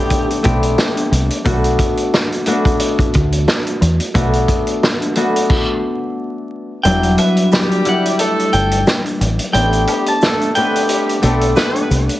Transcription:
Already playing: harp A3 B3 C4 D4 G4, clean electric guitar G4
0.10 kick, closed hi-hat
0.30 closed hi-hat
0.43 fingered electric bass B1, harp A3 B3 C4 D4 G4, kick, closed hi-hat
0.63 closed hi-hat
0.78 snare
0.97 closed hi-hat
1.12 fingered electric bass C2, closed hi-hat
1.30 closed hi-hat
1.44 fingered electric bass B1, harp A3 B3 D4 F#4, kick, closed hi-hat
1.64 closed hi-hat
1.79 kick, closed hi-hat
1.97 closed hi-hat
2.14 snare
2.32 closed hi-hat
2.46 harp A3 B3 D4 F#4, closed hi-hat
2.65 kick, closed hi-hat
2.80 closed hi-hat
2.99 kick, closed hi-hat
3.13 fingered electric bass D2, kick, closed hi-hat
3.32 closed hi-hat
3.48 snare
3.67 closed hi-hat
3.82 fingered electric bass E2, closed hi-hat
4.00 closed hi-hat
4.14 fingered electric bass B1, harp A3 B3 D4 F#4, kick, closed hi-hat
4.33 closed hi-hat
4.48 kick, closed hi-hat
4.67 closed hi-hat
4.83 snare
5.02 closed hi-hat
5.15 harp A3 B3 D4 F#4, closed hi-hat
5.36 closed hi-hat
5.50 kick, crash
6.83 fingered electric bass E1, harp F#3 G3 D4 E4, clean electric guitar G5, closed hi-hat, maracas
7.03 closed hi-hat
7.18 horn section B3 B4, clean electric guitar E5, closed hi-hat, high woodblock, maracas
7.36 closed hi-hat
7.52 horn section G3 G4, snare, maracas
7.72 closed hi-hat
7.85 harp G3 D4 E4 G4, clean electric guitar F#5, closed hi-hat, maracas
8.06 closed hi-hat
8.19 horn section A3 A4, closed hi-hat, maracas
8.39 closed hi-hat
8.53 fingered electric bass G1, clean electric guitar G5, closed hi-hat, maracas
8.71 closed hi-hat
8.87 snare, maracas
9.06 closed hi-hat
9.21 fingered electric bass A1, closed hi-hat, maracas
9.39 closed hi-hat
9.52 fingered electric bass A1, harp A3 B3 C4 D4 G4, clean electric guitar G5, closed hi-hat, maracas
9.73 closed hi-hat
9.87 horn section G3 G4, closed hi-hat, high woodblock, maracas
10.06 clean electric guitar A5, closed hi-hat
10.21 horn section A3 A4, snare, maracas
10.41 closed hi-hat
10.55 harp A3 B3 C4 D4 G4, horn section B3 B4, clean electric guitar G5, closed hi-hat, maracas
10.76 closed hi-hat
10.89 horn section G3 G4, closed hi-hat, maracas
11.09 closed hi-hat
11.22 fingered electric bass B1, harp A3 B3 C4 D4 G4, horn section A3 A4, closed hi-hat, maracas
11.41 closed hi-hat
11.56 horn section B3 B4, snare, maracas
11.76 closed hi-hat
11.90 fingered electric bass C2, closed hi-hat, maracas
12.09 closed hi-hat

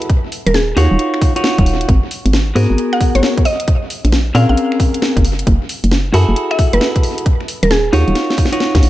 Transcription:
0.02 closed hi-hat
0.10 kick, closed hi-hat
0.32 open hi-hat
0.46 fm bass D#1, synth pluck A#4, closed hi-hat
0.54 synth pluck G#4, snare
0.77 fm bass D#2, clean electric guitar D#4 F4 F#4 C#5, open hi-hat
0.91 fm bass D#1
0.99 closed hi-hat
1.14 finger snap
1.22 kick, open hi-hat
1.36 clean electric guitar D#4 F4 F#4 C#5, closed hi-hat
1.44 snare
1.58 fm bass D#1, kick, closed hi-hat
1.66 open hi-hat
1.81 closed hi-hat
1.89 fm bass G#1, kick, closed hi-hat
2.11 open hi-hat
2.26 fm bass G#1, closed hi-hat
2.33 snare
2.55 fm bass G#2, clean electric guitar B3 F#4 G#4 A#4, open hi-hat
2.70 fm bass G#1
2.78 closed hi-hat
2.93 synth pluck F#5, finger snap
3.01 kick, open hi-hat
3.15 fm bass G#1, synth pluck C#5, closed hi-hat
3.23 snare
3.38 kick, closed hi-hat
3.45 synth pluck D#5, open hi-hat
3.60 closed hi-hat
3.68 kick, closed hi-hat
3.90 open hi-hat
4.05 fm bass A#1, closed hi-hat
4.12 snare
4.35 fm bass A#2, clean electric guitar C4 C#4 G#4 A#4, synth pluck F5, open hi-hat
4.49 fm bass A#1, synth pluck F5
4.57 closed hi-hat
4.72 finger snap
4.80 kick, open hi-hat
4.94 closed hi-hat
5.02 snare
5.17 fm bass F#1, kick, closed hi-hat
5.25 open hi-hat
5.39 closed hi-hat
5.47 fm bass F#1, kick, closed hi-hat
5.69 open hi-hat
5.84 fm bass F#1, closed hi-hat
5.92 snare
6.14 fm bass F#2, clean electric guitar E4 F#4 G#4 A4, open hi-hat
6.29 fm bass F#1
6.36 closed hi-hat
6.51 synth pluck E5, finger snap
6.59 kick, open hi-hat
6.73 fm bass F#1, synth pluck B4, closed hi-hat
6.81 snare
6.96 kick, closed hi-hat
7.03 open hi-hat
7.18 closed hi-hat
7.26 kick, closed hi-hat
7.41 finger snap
7.48 open hi-hat
7.63 fm bass D#1, synth pluck A#4, closed hi-hat
7.71 synth pluck G#4, snare, closed hi-hat
7.93 fm bass D#2, clean electric guitar D#4 F4 F#4 C#5, open hi-hat
8.08 fm bass D#1, closed hi-hat
8.15 snare, closed hi-hat
8.30 snare
8.38 kick, open hi-hat
8.45 snare
8.52 clean electric guitar D#4 F4 F#4 C#5, closed hi-hat
8.60 snare
8.75 fm bass D#2, kick, snare, closed hi-hat
8.83 fm bass A#1, open hi-hat

